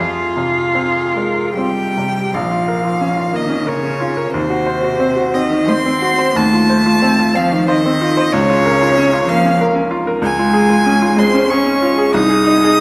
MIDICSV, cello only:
0, 0, Header, 1, 2, 480
1, 0, Start_track
1, 0, Key_signature, -5, "minor"
1, 0, Tempo, 792602
1, 1421, Tempo, 662983
1, 1422, Time_signature, 3, 2, 24, 8
1, 3341, Tempo, 704225
1, 3821, Tempo, 665188
1, 4781, Tempo, 641711
1, 9098, End_track
2, 0, Start_track
2, 0, Title_t, "Cello"
2, 0, Program_c, 0, 42
2, 0, Note_on_c, 0, 65, 64
2, 930, Note_off_c, 0, 65, 0
2, 948, Note_on_c, 0, 55, 62
2, 1420, Note_on_c, 0, 53, 55
2, 1431, Note_off_c, 0, 55, 0
2, 2128, Note_off_c, 0, 53, 0
2, 2132, Note_on_c, 0, 51, 65
2, 2383, Note_on_c, 0, 49, 69
2, 2394, Note_off_c, 0, 51, 0
2, 2864, Note_off_c, 0, 49, 0
2, 2869, Note_on_c, 0, 48, 65
2, 3568, Note_off_c, 0, 48, 0
2, 3586, Note_on_c, 0, 51, 71
2, 3827, Note_on_c, 0, 60, 84
2, 3838, Note_off_c, 0, 51, 0
2, 4297, Note_on_c, 0, 57, 81
2, 4308, Note_off_c, 0, 60, 0
2, 5025, Note_on_c, 0, 53, 83
2, 5036, Note_off_c, 0, 57, 0
2, 5261, Note_on_c, 0, 51, 80
2, 5272, Note_off_c, 0, 53, 0
2, 5738, Note_on_c, 0, 49, 82
2, 5750, Note_off_c, 0, 51, 0
2, 6446, Note_off_c, 0, 49, 0
2, 6450, Note_on_c, 0, 53, 79
2, 6687, Note_off_c, 0, 53, 0
2, 7173, Note_on_c, 0, 56, 81
2, 7880, Note_on_c, 0, 60, 85
2, 7891, Note_off_c, 0, 56, 0
2, 8132, Note_on_c, 0, 61, 80
2, 8143, Note_off_c, 0, 60, 0
2, 8600, Note_off_c, 0, 61, 0
2, 8605, Note_on_c, 0, 63, 93
2, 9098, Note_off_c, 0, 63, 0
2, 9098, End_track
0, 0, End_of_file